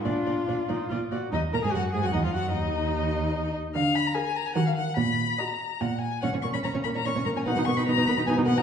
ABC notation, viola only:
X:1
M:3/4
L:1/16
Q:1/4=147
K:Ebm
V:1 name="Viola"
=D4 D2 E2 F2 G2 | E2 B A G2 A G E F G2 | E8- E2 z2 | z4 A3 z G3 z |
z4 G3 z F3 z | [K:A#phr] C C A, C C C A, C C C A, C | D D B, D D D B, D D D B, D |]